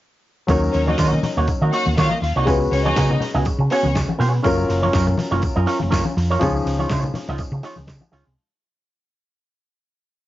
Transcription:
0.47 fingered electric bass D#2, grand piano F#3 C#4 D#4 A#4, clean electric guitar A#3 D#4 F#4 C#5, kick, closed hi-hat, tambourine, muted conga
0.62 muted clean electric guitar stroke, tambourine
0.72 fingered electric bass D#2, string section C#4 C#5, muted clean electric guitar stroke, open hi-hat, tambourine, muted conga
0.86 clean electric guitar A#3 D#4 F#4 C#5, string section D#4 D#5, high conga
0.98 fingered electric bass D#3, clean electric guitar A#3 D#4 F#4 C#5, kick, snare, closed hi-hat, tambourine
1.12 muted clean electric guitar stroke, low conga
1.23 muted clean electric guitar stroke, open hi-hat, tambourine, high conga, low conga
1.37 fingered electric bass D#2, clean electric guitar A#3 D#4 F#4 C#5, low conga
1.47 muted clean electric guitar stroke, kick, closed hi-hat, tambourine, muted conga
1.61 fingered electric bass D#3, clean electric guitar A#3 D#4 F#4 D#5
1.72 clean electric guitar A#3 D#4 F#4 C#5, string section F#4 F#5, open hi-hat, tambourine
1.86 fingered electric bass D#2, muted clean electric guitar stroke, tambourine, high conga
1.97 fingered electric bass D#3, clean electric guitar A#3 D#4 F#4 C#5, string section F4 F5, kick, snare, closed hi-hat, tambourine, muted conga, high conga
2.10 string section D#4 D#5, muted clean electric guitar stroke, high conga
2.21 fingered electric bass D#2, string section F4 F5, muted clean electric guitar stroke, open hi-hat, tambourine, muted conga
2.36 fingered electric bass C2, clean electric guitar A#3 D#4 F#4 C#5, string section D#4 D#5
2.45 fingered electric bass C#2, grand piano G#3 C#4 F4 B4, clean electric guitar B3 F#4 G#4 C#5, kick, closed hi-hat, tambourine
2.53 grand piano F#4
2.60 muted clean electric guitar stroke, tambourine
2.71 fingered electric bass C#2, string section C#4 C#5, muted clean electric guitar stroke, open hi-hat, tambourine
2.84 clean electric guitar B3 F#4 G#4 C#5, string section D#4 D#5, high conga
2.95 fingered electric bass C#3, clean electric guitar B3 F#4 G#4 C#5, kick, snare, closed hi-hat, tambourine
3.10 muted clean electric guitar stroke, low conga
3.20 muted clean electric guitar stroke, open hi-hat, tambourine, muted conga, low conga
3.34 fingered electric bass C#2, clean electric guitar B3 F#4 G#4 D#5, low conga
3.45 muted clean electric guitar stroke, muted fingered electric bass stroke, kick, closed hi-hat, tambourine, muted conga
3.58 fingered electric bass C#3, muted clean electric guitar stroke
3.70 clean electric guitar B3 F#4 G#4 C#5, string section C#4 C#5, open hi-hat, tambourine
3.83 fingered electric bass C#2, muted clean electric guitar stroke, high conga
3.95 muted clean electric guitar stroke, kick, snare, closed hi-hat, tambourine, muted conga, high conga
4.08 muted clean electric guitar stroke, high conga
4.19 fingered electric bass B2, clean electric guitar B3 F#4 G#4 C#5, open hi-hat, tambourine, muted conga
4.33 muted clean electric guitar stroke
4.43 fingered electric bass F#1, grand piano F#3 C#4 F4 A#4, clean electric guitar C#4 F4 A#4 C#5, kick, closed hi-hat, tambourine
4.58 muted clean electric guitar stroke, tambourine
4.69 fingered electric bass F#1, muted clean electric guitar stroke, open hi-hat, tambourine, muted conga
4.83 clean electric guitar C#4 F4 A#4 C#5, high conga
4.93 fingered electric bass F#2, clean electric guitar C#4 F4 A#4 C#5, kick, snare, closed hi-hat, tambourine
5.07 muted clean electric guitar stroke, low conga
5.17 muted clean electric guitar stroke, open hi-hat, tambourine, muted conga, high conga, low conga
5.31 fingered electric bass F#1, clean electric guitar C#4 F4 A#4 C#5, low conga
5.42 muted clean electric guitar stroke, kick, closed hi-hat, tambourine, muted conga
5.56 fingered electric bass F#2, clean electric guitar C#4 F4 A#4 D#5
5.66 clean electric guitar C#4 F4 A#4 C#5, open hi-hat, tambourine, muted conga
5.80 fingered electric bass F#1, muted clean electric guitar stroke, high conga
5.90 clean electric guitar C#4 F4 A#4 C#5, kick, snare, closed hi-hat, tambourine, muted conga, high conga
6.05 muted clean electric guitar stroke, high conga
6.17 fingered electric bass F2, muted clean electric guitar stroke, open hi-hat, tambourine, muted conga
6.31 clean electric guitar C#4 F4 A#4 C#5, tambourine
6.39 fingered electric bass C#2, grand piano F3 C#4 D#4 G#4, clean electric guitar G#3 D#4 F4 C#5, kick, closed hi-hat, tambourine
6.55 muted clean electric guitar stroke, tambourine
6.65 fingered electric bass C#2, muted clean electric guitar stroke, open hi-hat, tambourine, muted conga
6.79 clean electric guitar G#3 D#4 F4 C#5, tambourine, high conga
6.89 fingered electric bass C#3, clean electric guitar G#3 D#4 F4 C#5, kick, snare, closed hi-hat, tambourine
7.03 muted clean electric guitar stroke, low conga
7.14 muted clean electric guitar stroke, open hi-hat, tambourine, muted conga, high conga, low conga
7.28 fingered electric bass C#2, clean electric guitar G#3 D#4 F4 D#5, snare, low conga
7.38 muted fingered electric bass stroke, muted clean electric guitar stroke, kick, closed hi-hat, tambourine
7.52 fingered electric bass C#3, muted clean electric guitar stroke
7.63 clean electric guitar G#3 D#4 F4 C#5, open hi-hat, tambourine, muted conga
7.76 fingered electric bass C#2, muted clean electric guitar stroke, tambourine, high conga
7.87 fingered electric bass C#3, muted clean electric guitar stroke, kick, snare, closed hi-hat, tambourine
8.00 muted clean electric guitar stroke, high conga
8.12 fingered electric bass C#2, clean electric guitar G#3 D#4 F4 C#5, open hi-hat, tambourine, muted conga
8.25 fingered electric bass C2, muted clean electric guitar stroke

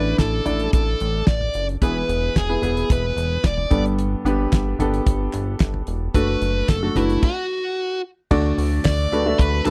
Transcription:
Already playing: analog synth bass A1, grand piano A2 D4 E4 A4 D5, lead electric guitar B4
0.18 analog synth bass A1, lead electric guitar A4, kick, snare, closed hi-hat
0.46 analog synth bass A1, grand piano D4 E4 A4 D5, closed hi-hat, floor tom
0.60 closed hi-hat
0.73 analog synth bass A1, lead electric guitar A4, kick, closed hi-hat
1.00 analog synth bass A1, closed hi-hat
1.27 analog synth bass A1, lead electric guitar D5, kick, snare, closed hi-hat
1.41 floor tom
1.54 analog synth bass F#1, closed hi-hat
1.69 closed hi-hat
1.82 analog synth bass E1, grand piano E3 B3 E4 G#4 B4, lead electric guitar B4, kick, closed hi-hat
2.08 analog synth bass E1, closed hi-hat
2.36 analog synth bass E1, lead electric guitar G#4, kick, snare, closed hi-hat
2.49 grand piano B3 E4 G#4 B4
2.62 analog synth bass E1, grand piano B3 E4 G#4 B4, closed hi-hat, floor tom
2.77 closed hi-hat
2.90 analog synth bass E1, lead electric guitar B4, kick, closed hi-hat
3.16 analog synth bass E1, closed hi-hat
3.44 analog synth bass E1, lead electric guitar D5, kick, snare, closed hi-hat
3.58 floor tom
3.70 analog synth bass G1, grand piano G2 B3 D4 G4 A4, kick, closed hi-hat, floor tom
3.86 closed hi-hat
3.99 closed hi-hat
4.25 analog synth bass G1, grand piano B3 D4 G4 B4, closed hi-hat
4.52 analog synth bass G1, kick, snare, clap, closed hi-hat
4.79 analog synth bass G1, grand piano B3 D4 G4 A4, closed hi-hat, floor tom
4.94 closed hi-hat
5.06 analog synth bass G1, kick, closed hi-hat
5.33 analog synth bass G1, clap, closed hi-hat
5.60 analog synth bass G1, kick, snare, clap, closed hi-hat
5.74 floor tom
5.87 analog synth bass E1, closed hi-hat
6.14 analog synth bass F#1, grand piano A3 D4 F#4 A4, lead electric guitar B4, kick, closed hi-hat
6.41 analog synth bass F#1, closed hi-hat
6.69 analog synth bass F#1, lead electric guitar A4, kick, snare, clap, closed hi-hat
6.83 grand piano A3 D4 F#4 A4
6.95 analog synth bass F#1, grand piano A3 D4 F#4 B4, lead electric guitar E4, closed hi-hat, floor tom
7.10 closed hi-hat
7.23 lead electric guitar F#4, kick, crash
8.31 analog synth bass D2, grand piano D3 A3 D4 F#4 A4 D5, kick, crash
8.58 analog synth bass D2, hi-hat pedal, open hi-hat
8.85 analog synth bass D2, lead electric guitar D5, kick, snare, clap, hi-hat pedal, open hi-hat
9.12 analog synth bass D2, grand piano A3 D4 F#4 A4 B4, hi-hat pedal, open hi-hat
9.26 grand piano A3 D4 F#4 A4 E5
9.38 analog synth bass D2, lead electric guitar B4, kick, hi-hat pedal, open hi-hat
9.66 analog synth bass D2, grand piano A3 D4 F#4 A4 B4, lead electric guitar A4, clap, floor tom, hi-hat pedal, open hi-hat

